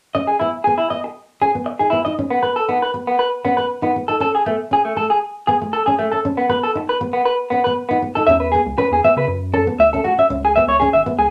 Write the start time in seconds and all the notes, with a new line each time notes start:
0.15 C#4 D#5
0.27 G#4
0.39 B3 E4
0.64 B3 G#4
0.78 E4
0.90 B3 D#5
1.04 muted clean electric guitar stroke
1.41 C#4 G#4
1.55 B3
1.66 muted clean electric guitar stroke
1.79 D#4 G#4
1.90 B3 E4
2.05 D#4 D#5
2.19 C#4
2.30 B3
2.43 B3 B4
2.56 A4
2.69 B3 D#4
2.82 B4
2.94 B3
3.07 B3
3.19 B4
3.45 B3 C#4
3.57 B3 B4
3.82 B3 D#4
3.96 B3
4.08 D#4 A4
4.20 C#4 A4
4.35 G#4
4.46 A3 B3
4.71 C#4 G#4
4.85 A3
4.97 A3 A4
5.10 G#4
5.47 B3 G#4
5.62 A3
5.73 A4
5.86 C#4 G#4
5.99 A3
6.12 C#4 A4
6.25 C#4
6.37 B3
6.49 B3 B4
6.63 A4
6.75 D#4, muted clean electric guitar stroke
6.89 B4
7.01 B3
7.13 B3
7.25 B4
7.50 B3 C#4
7.64 B3 B4
7.89 B3 D#4
8.02 B3
8.15 D#4 A4
8.27 E2 C#4 E5
8.40 B4
8.52 B3 G#4
8.66 C#2
8.78 C#4 B4
8.91 E2 G#4
9.04 B3 E5
9.17 C#3 B4
9.27 F#2
9.54 C#4 A4
9.67 B3
9.79 D2 E5
9.93 C#4 A4
10.04 A3 F#4
10.18 C#4 E5
10.30 C#2 C#4
10.45 G#4
10.56 B3 E5
10.67 C#2 C#5
10.80 C#4 G#4
10.93 G#1 E5
11.06 B3
11.18 C#2 G#4